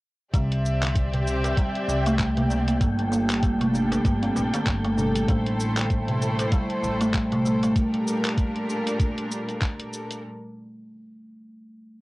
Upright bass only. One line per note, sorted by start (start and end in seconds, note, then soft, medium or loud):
0.34 1.51 C2 medium
1.88 2.75 C2 medium
2.81 3.99 G1 loud
4.05 4.28 G1 medium
4.36 4.49 A#1 medium
4.67 5.22 G1 medium
5.29 6.46 A1 loud
6.83 7.70 A1 medium